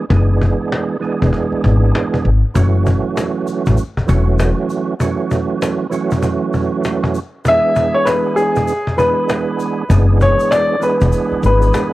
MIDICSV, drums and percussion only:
0, 0, Header, 1, 3, 480
1, 0, Start_track
1, 0, Key_signature, 3, "minor"
1, 0, Tempo, 612245
1, 83, Time_signature, 4, 2, 24, 8
1, 9353, End_track
2, 0, Start_track
2, 0, Title_t, "Cajon"
2, 80, Note_on_c, 9, 36, 115
2, 159, Note_off_c, 9, 36, 0
2, 325, Note_on_c, 9, 36, 95
2, 404, Note_off_c, 9, 36, 0
2, 566, Note_on_c, 9, 38, 115
2, 645, Note_off_c, 9, 38, 0
2, 804, Note_on_c, 9, 38, 37
2, 811, Note_off_c, 9, 38, 0
2, 811, Note_on_c, 9, 38, 41
2, 890, Note_off_c, 9, 38, 0
2, 957, Note_on_c, 9, 36, 99
2, 1035, Note_off_c, 9, 36, 0
2, 1040, Note_on_c, 9, 36, 93
2, 1051, Note_on_c, 9, 38, 52
2, 1118, Note_off_c, 9, 36, 0
2, 1129, Note_off_c, 9, 38, 0
2, 1287, Note_on_c, 9, 36, 91
2, 1365, Note_off_c, 9, 36, 0
2, 1447, Note_on_c, 9, 38, 31
2, 1526, Note_off_c, 9, 38, 0
2, 1529, Note_on_c, 9, 38, 121
2, 1607, Note_off_c, 9, 38, 0
2, 1676, Note_on_c, 9, 36, 95
2, 1754, Note_off_c, 9, 36, 0
2, 1759, Note_on_c, 9, 38, 43
2, 1837, Note_off_c, 9, 38, 0
2, 2002, Note_on_c, 9, 36, 116
2, 2080, Note_off_c, 9, 36, 0
2, 2247, Note_on_c, 9, 36, 94
2, 2325, Note_off_c, 9, 36, 0
2, 2488, Note_on_c, 9, 38, 118
2, 2566, Note_off_c, 9, 38, 0
2, 2731, Note_on_c, 9, 38, 41
2, 2810, Note_off_c, 9, 38, 0
2, 2877, Note_on_c, 9, 36, 99
2, 2956, Note_off_c, 9, 36, 0
2, 2970, Note_on_c, 9, 38, 53
2, 3049, Note_off_c, 9, 38, 0
2, 3116, Note_on_c, 9, 36, 91
2, 3194, Note_off_c, 9, 36, 0
2, 3207, Note_on_c, 9, 36, 96
2, 3285, Note_off_c, 9, 36, 0
2, 3446, Note_on_c, 9, 38, 123
2, 3525, Note_off_c, 9, 38, 0
2, 3675, Note_on_c, 9, 38, 45
2, 3754, Note_off_c, 9, 38, 0
2, 3921, Note_on_c, 9, 36, 115
2, 4000, Note_off_c, 9, 36, 0
2, 4166, Note_on_c, 9, 36, 96
2, 4244, Note_off_c, 9, 36, 0
2, 4408, Note_on_c, 9, 38, 114
2, 4486, Note_off_c, 9, 38, 0
2, 4643, Note_on_c, 9, 38, 38
2, 4650, Note_off_c, 9, 38, 0
2, 4650, Note_on_c, 9, 38, 42
2, 4729, Note_off_c, 9, 38, 0
2, 4797, Note_on_c, 9, 36, 100
2, 4876, Note_off_c, 9, 36, 0
2, 4880, Note_on_c, 9, 36, 96
2, 4891, Note_on_c, 9, 38, 53
2, 4958, Note_off_c, 9, 36, 0
2, 4970, Note_off_c, 9, 38, 0
2, 5127, Note_on_c, 9, 36, 97
2, 5205, Note_off_c, 9, 36, 0
2, 5369, Note_on_c, 9, 38, 127
2, 5448, Note_off_c, 9, 38, 0
2, 5516, Note_on_c, 9, 36, 97
2, 5594, Note_off_c, 9, 36, 0
2, 5842, Note_on_c, 9, 36, 119
2, 5920, Note_off_c, 9, 36, 0
2, 6086, Note_on_c, 9, 36, 94
2, 6164, Note_off_c, 9, 36, 0
2, 6327, Note_on_c, 9, 38, 116
2, 6406, Note_off_c, 9, 38, 0
2, 6570, Note_on_c, 9, 38, 42
2, 6648, Note_off_c, 9, 38, 0
2, 6717, Note_on_c, 9, 36, 101
2, 6795, Note_off_c, 9, 36, 0
2, 6810, Note_on_c, 9, 38, 52
2, 6888, Note_off_c, 9, 38, 0
2, 6955, Note_on_c, 9, 36, 88
2, 7034, Note_off_c, 9, 36, 0
2, 7047, Note_on_c, 9, 36, 93
2, 7125, Note_off_c, 9, 36, 0
2, 7288, Note_on_c, 9, 38, 123
2, 7367, Note_off_c, 9, 38, 0
2, 7516, Note_on_c, 9, 38, 45
2, 7594, Note_off_c, 9, 38, 0
2, 7761, Note_on_c, 9, 36, 117
2, 7839, Note_off_c, 9, 36, 0
2, 8006, Note_on_c, 9, 36, 93
2, 8084, Note_off_c, 9, 36, 0
2, 8246, Note_on_c, 9, 38, 121
2, 8324, Note_off_c, 9, 38, 0
2, 8481, Note_on_c, 9, 38, 38
2, 8489, Note_off_c, 9, 38, 0
2, 8489, Note_on_c, 9, 38, 41
2, 8567, Note_off_c, 9, 38, 0
2, 8637, Note_on_c, 9, 36, 104
2, 8715, Note_off_c, 9, 36, 0
2, 8729, Note_on_c, 9, 38, 53
2, 8808, Note_off_c, 9, 38, 0
2, 8962, Note_on_c, 9, 38, 42
2, 9041, Note_off_c, 9, 38, 0
2, 9125, Note_on_c, 9, 38, 31
2, 9203, Note_off_c, 9, 38, 0
2, 9205, Note_on_c, 9, 38, 127
2, 9284, Note_off_c, 9, 38, 0
2, 9353, End_track
3, 0, Start_track
3, 0, Title_t, "Drums"
3, 2003, Note_on_c, 9, 82, 75
3, 2082, Note_off_c, 9, 82, 0
3, 2244, Note_on_c, 9, 82, 48
3, 2322, Note_off_c, 9, 82, 0
3, 2487, Note_on_c, 9, 82, 76
3, 2565, Note_off_c, 9, 82, 0
3, 2724, Note_on_c, 9, 82, 51
3, 2802, Note_off_c, 9, 82, 0
3, 2870, Note_on_c, 9, 82, 52
3, 2948, Note_off_c, 9, 82, 0
3, 2960, Note_on_c, 9, 82, 78
3, 3038, Note_off_c, 9, 82, 0
3, 3204, Note_on_c, 9, 82, 54
3, 3282, Note_off_c, 9, 82, 0
3, 3443, Note_on_c, 9, 82, 59
3, 3521, Note_off_c, 9, 82, 0
3, 3683, Note_on_c, 9, 82, 56
3, 3761, Note_off_c, 9, 82, 0
3, 3923, Note_on_c, 9, 82, 75
3, 4001, Note_off_c, 9, 82, 0
3, 4162, Note_on_c, 9, 82, 50
3, 4240, Note_off_c, 9, 82, 0
3, 4407, Note_on_c, 9, 82, 75
3, 4486, Note_off_c, 9, 82, 0
3, 4643, Note_on_c, 9, 82, 53
3, 4721, Note_off_c, 9, 82, 0
3, 4790, Note_on_c, 9, 82, 53
3, 4868, Note_off_c, 9, 82, 0
3, 4880, Note_on_c, 9, 82, 73
3, 4959, Note_off_c, 9, 82, 0
3, 5121, Note_on_c, 9, 82, 55
3, 5199, Note_off_c, 9, 82, 0
3, 5362, Note_on_c, 9, 82, 58
3, 5440, Note_off_c, 9, 82, 0
3, 5602, Note_on_c, 9, 82, 56
3, 5680, Note_off_c, 9, 82, 0
3, 5842, Note_on_c, 9, 82, 79
3, 5920, Note_off_c, 9, 82, 0
3, 6081, Note_on_c, 9, 82, 52
3, 6159, Note_off_c, 9, 82, 0
3, 6325, Note_on_c, 9, 82, 76
3, 6403, Note_off_c, 9, 82, 0
3, 6562, Note_on_c, 9, 82, 53
3, 6640, Note_off_c, 9, 82, 0
3, 6708, Note_on_c, 9, 82, 52
3, 6787, Note_off_c, 9, 82, 0
3, 6801, Note_on_c, 9, 82, 75
3, 6880, Note_off_c, 9, 82, 0
3, 7043, Note_on_c, 9, 82, 54
3, 7121, Note_off_c, 9, 82, 0
3, 7284, Note_on_c, 9, 82, 58
3, 7363, Note_off_c, 9, 82, 0
3, 7525, Note_on_c, 9, 82, 54
3, 7603, Note_off_c, 9, 82, 0
3, 7764, Note_on_c, 9, 82, 75
3, 7842, Note_off_c, 9, 82, 0
3, 8003, Note_on_c, 9, 82, 51
3, 8081, Note_off_c, 9, 82, 0
3, 8150, Note_on_c, 9, 82, 51
3, 8228, Note_off_c, 9, 82, 0
3, 8246, Note_on_c, 9, 82, 76
3, 8324, Note_off_c, 9, 82, 0
3, 8483, Note_on_c, 9, 82, 54
3, 8561, Note_off_c, 9, 82, 0
3, 8630, Note_on_c, 9, 82, 54
3, 8709, Note_off_c, 9, 82, 0
3, 8720, Note_on_c, 9, 82, 72
3, 8799, Note_off_c, 9, 82, 0
3, 8962, Note_on_c, 9, 82, 55
3, 9040, Note_off_c, 9, 82, 0
3, 9110, Note_on_c, 9, 82, 57
3, 9189, Note_off_c, 9, 82, 0
3, 9202, Note_on_c, 9, 82, 58
3, 9280, Note_off_c, 9, 82, 0
3, 9353, End_track
0, 0, End_of_file